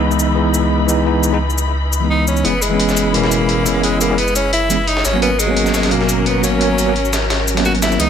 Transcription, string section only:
Already playing: E3 D#4 B5
2.45 G#3 E4 B5
5.05 F#3 C#4 A#4
8.00 C#3 D#4 B4

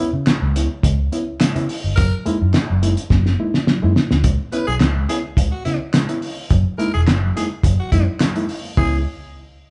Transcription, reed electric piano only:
0.00 C#4 E4
0.14 C#4 E4
0.27 C#4 E4
0.42 C#3 G#3
0.56 B3 C#4 E4
0.84 C#3 G#3
1.12 B3 C#4 E4
1.27 C#4 E4
1.41 C#3 G#3
1.55 B3 C#4 E4
1.69 C#4 E4
1.98 F#3
2.25 G#3 A#3 D#4 E4
2.41 D#4 E4
2.54 D#4 E4
2.70 F#3
2.83 G#3 A#3 D#4 E4
3.12 F#3
3.39 G#3 A#3 D#4 E4
3.54 D#4 E4
3.68 F#3
3.82 G#3 A#3 D#4 E4
3.96 D#4 E4
4.25 C#3 G#3
4.53 B3 C#4 E4
4.68 C#4 E4
4.81 C#4 E4
4.96 C#3 G#3
5.09 B3 C#4 E4
5.37 C#3 G#3
5.65 B3 C#4 E4
5.81 C#4 E4
5.94 C#3 G#3
6.09 B3 C#4 E4
6.23 C#4 E4
6.51 F#3
6.78 G#3 A#3 D#4 E4
6.94 D#4 E4
7.08 D#4 E4
7.23 F#3
7.36 G#3 A#3 D#4 E4
7.64 F#3
7.92 G#3 A#3 D#4 E4
8.08 D#4 E4
8.21 F#3
8.36 G#3 A#3 D#4 E4
8.49 D#4 E4
8.77 B3 C#4 E4

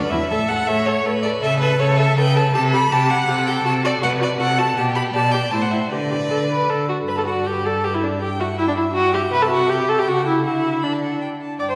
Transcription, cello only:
0.11 E2
0.30 A2
0.67 A2
1.05 A2
1.42 C#3
1.79 C#3
2.16 C#3
2.54 C3
2.91 C3
3.27 C3
3.64 C3
4.02 C3
4.40 C3
4.77 B2
5.14 B2
5.52 A2
5.92 D3
6.30 D3
6.69 D3
7.08 G2
9.33 C3
10.07 C#3
10.45 D3
11.60 G2

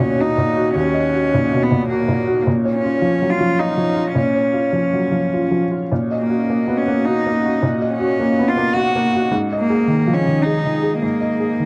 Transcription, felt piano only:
Already playing: D#2 B2 F#4 D#5
0.00 A#2
0.19 F#4
0.38 A#2
0.57 F#4
0.75 D#2
0.94 D#5
1.14 F#4
1.34 A#2
1.53 B2
1.71 A#2
1.91 F#4
2.08 A#2
2.27 F#4
2.47 A#2
2.65 C#5
2.84 F4
3.02 F3
3.22 F#3
3.40 F3
3.59 F4
3.77 F3
3.96 F4
4.15 A#2
4.35 C#5
4.54 F4
4.73 F3
4.93 F#3
5.11 F3
5.33 F4
5.51 F3
5.71 F4
5.92 A#2
6.11 D#5
6.30 F#4
6.50 A#3
6.68 B3
6.88 A#3
7.08 F#4
7.26 A#3
7.46 F#4
7.62 A#2
7.82 D#5
8.00 F#4
8.20 A#3
8.39 B3
8.57 A#3
8.76 F#4
8.96 A#3
9.15 F#4
9.32 G#2
9.52 D#5
9.70 G#4
9.87 D#3
10.07 F3
10.26 D#3
10.46 G#4
10.65 D#3
10.83 G#4
11.02 G#2
11.21 D#5
11.40 G#4
11.59 D#3

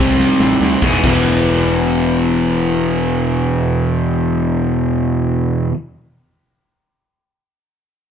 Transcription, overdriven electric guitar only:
Already playing: C3 G3 C4
0.82 E2 B2
0.86 E3
1.03 E2 B2 E3

